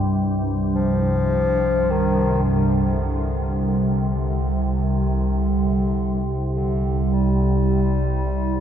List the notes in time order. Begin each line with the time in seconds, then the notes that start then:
Already playing: C2 G2
0.74 F3
1.91 D#3
2.48 C2 D3
3.66 D3
4.82 D#3
5.39 D3
6.56 D3
7.13 G3